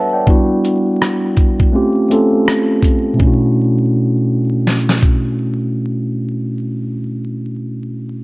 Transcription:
0.00 0.28 B4 medium
0.00 0.28 C#5 medium
0.00 0.29 E5 medium
0.00 0.29 F#5 medium
0.00 0.12 A5 medium
0.13 0.48 D5 soft
0.13 0.48 G5 medium
0.27 1.47 G3 medium
0.27 1.48 B3 medium
0.27 1.48 D4 medium
0.27 1.49 E4 medium
0.27 1.49 F#4 medium
0.27 kick loud
0.65 closed hi-hat medium
1.02 cross-stick loud
1.37 kick medium
1.37 closed hi-hat soft
1.60 kick medium
1.72 2.04 A3 medium
1.72 2.04 C4 medium
1.72 2.05 C#4 medium
1.72 2.05 F4 medium
1.72 2.06 G4 medium
2.09 3.02 A3 medium
2.09 3.02 C4 medium
2.09 3.03 C#4 medium
2.09 3.03 F4 medium
2.09 3.04 A4 medium
2.09 closed hi-hat medium
2.48 cross-stick loud
2.83 kick medium
2.83 closed hi-hat medium
3.13 6.91 B2 medium
3.13 6.94 A3 medium
3.19 6.96 C#4 medium
3.19 6.99 D4 medium
3.19 kick loud
3.24 7.02 E4 medium
3.24 7.05 F#4 medium
4.67 snare medium
4.89 snare medium
5.03 kick medium

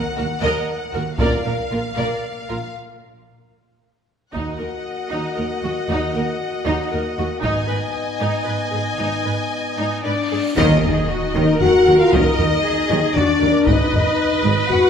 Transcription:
0.00 1.20 F#5 medium
0.15 0.26 D#2 soft
0.15 0.23 F#4 soft
0.15 0.26 A#4 soft
0.42 0.51 D#2 medium
0.42 0.67 A#4 medium
0.42 0.66 D#5 medium
0.92 1.02 D#2 soft
0.92 1.03 D#2 soft
0.92 1.00 F#4 soft
0.92 1.03 A#4 soft
1.18 1.27 A#1 medium
1.18 1.28 A#2 medium
1.18 1.37 D4 soft
1.18 1.37 F4 soft
1.18 1.44 A#4 medium
1.18 1.44 D5 soft
1.18 2.72 F5 soft
1.18 taiko medium
1.45 1.53 A#1 soft
1.45 1.53 A#2 soft
1.45 1.54 A#4 soft
1.45 1.55 A#4 soft
1.71 1.79 A#1 soft
1.71 1.79 A#2 soft
1.71 1.80 F4 soft
1.71 1.81 A#4 soft
1.97 2.06 A#1 soft
1.97 2.05 A#2 medium
1.97 2.22 A#4 soft
1.97 2.22 D5 soft
2.49 2.58 A#1 soft
2.49 2.57 A#2 soft
2.49 2.57 F4 soft
2.49 2.58 A#4 soft
4.34 4.58 D#2 soft
4.34 4.42 D#2 soft
4.34 7.40 A#3 soft
4.34 4.58 D#4 soft
4.34 7.40 F#4 soft
4.34 7.40 D#5 soft
4.34 7.40 F#5 soft
4.34 taiko soft
4.59 4.69 D#2 soft
4.59 4.67 A#4 soft
5.11 5.20 D#2 soft
5.11 5.35 D#4 soft
5.37 5.46 D#2 soft
5.37 5.45 A#4 soft
5.63 5.71 D#2 soft
5.63 5.72 F#4 soft
5.90 5.98 D#2 soft
5.90 6.14 D#2 medium
5.90 6.14 D#4 medium
6.15 6.23 D#2 soft
6.15 6.23 A#4 soft
6.66 6.74 D#2 medium
6.66 6.91 D#4 medium
6.93 7.01 D#2 soft
6.93 7.01 A#4 soft
7.18 7.26 D#2 soft
7.18 7.26 F#4 soft
7.43 7.68 G#1 medium
7.43 7.52 G#2 medium
7.43 10.05 B3 soft
7.43 7.68 D#4 medium
7.43 10.01 D#4 soft
7.43 10.01 D#5 soft
7.43 10.01 G#5 medium
7.43 taiko soft
7.69 7.78 G#2 soft
7.69 7.77 B4 soft
8.20 8.28 G#2 soft
8.20 8.45 D#4 soft
8.46 8.55 G#2 soft
8.46 8.54 B4 soft
8.73 8.81 G#2 soft
8.73 8.81 G#4 soft
8.98 9.23 G#1 soft
8.98 9.07 G#2 soft
8.98 9.24 D#4 soft
8.98 cymbal swell soft
9.26 9.34 G#2 soft
9.26 9.34 B4 soft
9.78 9.86 G#2 soft
9.78 10.03 D#4 soft
10.04 10.13 G#2 soft
10.04 10.54 D4 medium
10.04 10.14 B4 soft
10.04 10.53 D5 soft
10.04 10.54 D5 soft
10.32 10.40 G#2 soft
10.32 10.40 G#4 soft
10.56 10.81 D#2 medium
10.56 10.82 D#2 medium
10.56 11.31 D#3 medium
10.56 10.82 D#3 medium
10.56 11.56 D#4 medium
10.56 10.82 A#4 medium
10.56 11.56 D#5 medium
10.56 11.57 D#5 loud
10.56 taiko medium
10.56 sub drop medium
10.83 10.93 D#2 medium
10.83 10.92 D#2 medium
10.83 10.92 D#3 medium
10.83 11.09 G#4 medium
10.83 taiko low medium
11.09 11.35 F#4 medium
11.35 11.43 D#2 medium
11.35 11.45 D#2 medium
11.35 11.43 D#3 medium
11.35 12.64 A#4 medium
11.60 11.68 D#2 medium
11.60 11.71 D#2 medium
11.60 11.70 D#3 medium
11.60 11.99 F#4 medium
11.60 11.98 F#5 medium
11.60 12.00 F#5 medium
11.60 taiko low medium
11.86 11.94 D#2 medium
11.86 11.97 D#2 medium
11.86 11.95 D#3 medium
11.99 12.13 F4 medium
11.99 12.12 F5 medium
12.12 12.20 D#2 medium
12.12 12.23 D#2 medium
12.12 12.21 D#3 medium
12.12 13.15 D#4 medium
12.12 13.15 D#5 medium
12.12 taiko medium
12.38 12.46 D#2 medium
12.38 12.49 D#2 medium
12.38 12.46 D#3 medium
12.38 taiko low soft
12.64 13.14 G#4 medium
12.89 13.00 D#2 medium
12.89 12.97 D#2 medium
12.89 12.98 D#3 medium
13.15 13.25 D#2 medium
13.15 13.24 D#2 medium
13.15 13.23 D#3 medium
13.15 13.66 D4 medium
13.15 13.41 F#4 medium
13.15 13.66 D5 medium
13.15 13.65 D5 medium
13.15 taiko low medium
13.41 13.51 D#2 medium
13.41 13.49 D#2 medium
13.41 13.49 D#3 medium
13.41 13.67 A#4 medium
13.66 13.76 G#1 medium
13.66 13.75 G#1 medium
13.66 13.75 G#2 medium
13.66 14.52 D#4 medium
13.66 14.90 B4 medium
13.66 14.66 D#5 medium
13.66 taiko medium
13.92 14.02 G#1 medium
13.92 14.01 G#1 medium
13.92 14.01 G#2 medium
13.92 taiko low soft
14.43 14.53 G#1 medium
14.43 14.51 G#1 medium
14.43 14.52 G#2 medium
14.69 14.79 G#1 soft
14.69 14.77 G#1 soft
14.69 14.78 G#2 soft
14.69 14.90 F#4 medium
14.69 14.90 F#5 medium
14.69 taiko low medium

